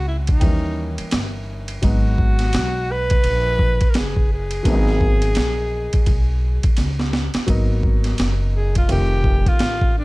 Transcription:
Already playing: C#2 G#3 C4 C#4 E4
0.08 E4
0.27 D#4, kick, ride
0.40 D#2 E3 G3 A#3 C#4, kick, ride
0.98 muted upright bass stroke, ride
1.11 G1, snare, hi-hat pedal, ride
1.68 ride
1.82 G#1 F#3 G#3 B3 D#4 F#4, kick, ride
2.18 kick
2.39 snare, ride
2.53 B1, snare, hi-hat pedal, ride
2.92 B4
3.10 kick, ride
3.24 A#1, ride
3.59 kick
3.81 kick, ride
3.90 A#4
3.94 F#1 G#4, snare, hi-hat pedal, ride
4.16 kick
4.33 G#4
4.51 ride
4.63 G#1 F#3 A#3 B3 D4, kick, ride
4.73 D#4
4.87 snare
5.01 kick
5.22 ride
5.35 A#1, snare, hi-hat pedal, ride
5.93 muted upright bass stroke, kick, ride
6.06 B1, kick, ride
6.63 kick, ride
6.77 C#2, snare, hi-hat pedal, ride
6.99 snare
7.13 snare
7.34 muted upright bass stroke, snare, ride
7.47 G#1 F#3 A#3 B3 D#4, kick, ride
7.83 kick
8.04 snare, ride
8.18 F#1, snare, hi-hat pedal, ride
8.56 G#4
8.75 F4, kick, ride
8.88 F1 D#3 A3 C4 F4 G4, ride
9.24 kick
9.46 F4, muted upright bass stroke, kick, ride
9.59 A1, snare, hi-hat pedal, ride
9.82 kick
9.98 D4

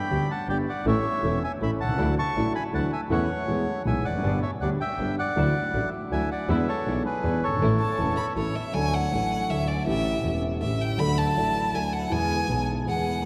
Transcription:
Already playing: G5 B5
0.10 D2 D3 G3 B3 D4 G4
0.31 F#5 A5
0.48 G1 G2 D3 G3 B3 D4 G4 D5 G5
0.69 D5 F#5
0.86 A1 A2 E3 A3 C#4 E4 A4 C#5 E5
1.23 E1 E2 E3 A3 C#4 E4 A4
1.44 E5 G#5
1.61 A1 A2 E3 A3 C#4 E4 A4 E5 B5
1.80 B1 C2 F#5 A5
1.89 C2
1.94 C#2
1.98 D2 D3 E3 F#3 A3 D4 E4 F#4
2.19 A5 C#6
2.35 A1 A2 E3 F#3 A3 D4 E4 F#4
2.55 G#5 B5
2.73 D2 D3 E3 F#3 A3 D4 E4 F#4 F#5 A5
2.93 E5 G#5
3.10 E2 E3 A3 C#4 E4 A4 C#5 F#5
3.47 E2 E3 G#3 B3 E4 G#4
3.85 B1 B2 E3 G#3 B3 E4 G#4 E5 G#5
4.04 F1 D5 F#5
4.09 E2
4.14 F2
4.18 F#2
4.23 G1 G2 D3 G3 B3 D4 G4
4.42 C#5 E5
4.61 D2 D3 G3 B3 D4 G4 D5 F#5
4.81 E5 G5
4.98 G1 G2 D3 G3 B3 D4 G4
5.19 D5 F#5
5.36 D2 D3 E3 F#3 A3 D4 E4 F#4
5.74 A1 A2 E3 F#3 A3 D4 E4 F#4
6.11 D2 D3 E3 F#3 A3 D4 E4 F#4 E5 G#5
6.31 D5 F#5
6.49 E2 E3 G#3 B3 D4 E4 G#4 B4 E5
6.68 A4 C#5
6.86 B1 B2 E3 G#3 B3 D4 E4 G#4
7.06 G#4 B4
7.23 E2 E3 G#3 B3 D4 E4 G#4
7.44 F#1 G1 A4 C#5
7.53 G1 G#1
7.61 A1 A2 E3 A3 C#4 E4 A4
7.80 A5
7.99 E1 E2 E3 A3 C#4 E4
8.17 B5
8.36 A1 A2 E3 A3 C#4 E4 A4 C#5
8.56 E5
8.72 D2 D3 F#3 A3 D4 A4 G#5
8.94 F#5
9.10 A1 A2 F#3 A3 D4 A4
9.48 D2 D3 F#3 A3 D4 E5
9.52 A4
9.68 D5
9.85 A1 A2 E3 A3 C#4 G4 E5
10.22 E1 E2 E3 A3 C#4 G4
10.60 A1 A2 E3 A3 C#4 E5
10.64 G4
10.82 G5
10.97 D2 D3 F#3 A3 D4 A4 B5
11.18 A5
11.34 A1 A2 F#3 A3 D4
11.39 A4
11.72 D2 D3 F#3 A3 D4 A4 G#5
11.93 F#5
12.10 E2 E3 G#3 B3 G#4 G#5
12.48 B1 B2 E3 G#3 B3 G#4
12.85 E2 E3 G#3 B3 F#5
12.89 G#4
13.22 F#3

